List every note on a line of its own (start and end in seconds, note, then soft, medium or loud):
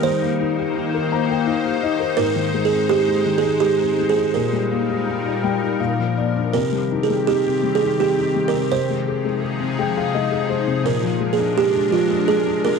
0.00 2.13 D#3 medium
0.00 4.30 D#4 medium
0.00 1.78 C5 medium
0.06 2.16 D#3 medium
0.06 2.16 A#3 medium
0.06 4.30 C5 medium
0.22 1.11 A#3 soft
0.40 0.75 D#4 medium
0.59 1.64 G4 medium
0.76 1.46 D#4 medium
0.94 1.29 A#4 soft
1.12 2.15 A#3 medium
1.12 1.28 A#5 medium
1.30 1.98 A#4 soft
1.30 1.46 G5 soft
1.47 1.82 D#4 soft
1.47 1.80 F5 medium
1.65 2.16 G4 soft
1.83 2.17 D#4 soft
1.83 2.16 D#5 medium
2.00 2.17 A#4 soft
2.17 4.30 G#2 medium
2.17 4.32 G#3 medium
2.17 2.66 A#4 medium
2.36 3.24 D#3 medium
2.54 2.89 G#3 soft
2.65 2.90 G#4 medium
2.72 3.80 C4 soft
2.89 3.62 G#3 medium
2.89 3.39 G4 medium
3.08 3.43 D#4 soft
3.26 4.31 D#3 medium
3.38 3.63 G#4 medium
3.44 4.16 D#4 soft
3.60 3.98 G#3 soft
3.60 4.11 G4 medium
3.81 4.33 C4 soft
3.99 4.34 G#3 soft
4.10 4.34 G#4 medium
4.17 4.34 D#4 soft
4.34 5.79 A#2 medium
4.34 5.77 A#2 medium
4.34 5.79 G3 medium
4.34 5.79 D#4 medium
4.34 6.13 A#4 medium
4.34 6.52 A#4 medium
4.53 5.43 G3 soft
4.71 5.05 A#3 soft
4.90 5.24 G4 soft
5.07 5.78 A#3 soft
5.26 5.60 G4 soft
5.44 5.79 G3 medium
5.44 5.78 G5 medium
5.62 5.80 G4 soft
5.80 6.51 A#2 medium
5.80 6.14 F5 medium
5.99 6.52 F3 soft
6.17 6.53 A#3 soft
6.17 6.51 D5 medium
6.36 6.53 D4 soft
6.54 7.45 C3 medium
6.54 8.69 D#3 medium
6.54 8.69 C4 medium
6.54 8.69 G4 medium
6.54 7.04 A#4 medium
6.72 7.08 G3 soft
6.92 7.26 D#4 medium
7.03 7.26 G#4 medium
7.10 7.62 G3 soft
7.27 7.81 D#4 soft
7.27 7.77 G4 medium
7.46 8.52 C3 soft
7.63 7.99 G3 medium
7.75 7.98 G#4 medium
7.82 8.16 D#4 soft
8.00 8.34 G3 soft
8.00 8.49 G4 medium
8.18 8.70 D#4 soft
8.36 8.70 G3 soft
8.48 8.59 A#4 medium
8.54 8.70 C3 soft
8.71 10.83 C3 medium
8.71 9.59 C3 medium
8.71 10.84 F3 medium
8.71 10.83 D#4 medium
8.71 10.84 G#4 medium
8.71 10.46 C5 medium
8.90 9.24 G#3 soft
9.08 9.41 G#4 soft
9.25 9.78 G#3 soft
9.42 9.96 G#4 soft
9.60 10.66 C3 soft
9.79 10.13 G#3 medium
9.79 9.95 G5 medium
9.97 10.30 G#4 soft
9.97 10.13 F5 medium
10.14 10.48 G#3 medium
10.14 10.47 D#5 medium
10.32 10.84 G#4 soft
10.49 10.84 G#3 soft
10.49 10.83 C5 medium
10.68 10.85 C3 medium
10.84 12.79 A#2 medium
10.84 12.79 G#3 medium
10.84 12.79 D4 medium
10.84 11.35 A#4 medium
10.84 12.79 A#4 medium
11.03 11.90 F3 medium
11.20 11.55 G#3 soft
11.33 11.58 G#4 medium
11.39 11.72 D4 medium
11.56 12.27 G#3 soft
11.56 11.95 G4 medium
11.74 12.09 D4 medium
11.91 12.79 F3 medium
11.91 12.30 F4 medium
12.10 12.45 D4 soft
12.28 12.64 G#3 medium
12.28 12.66 G#4 medium
12.47 12.79 D4 medium
12.65 12.79 G#3 soft
12.65 12.79 A#4 medium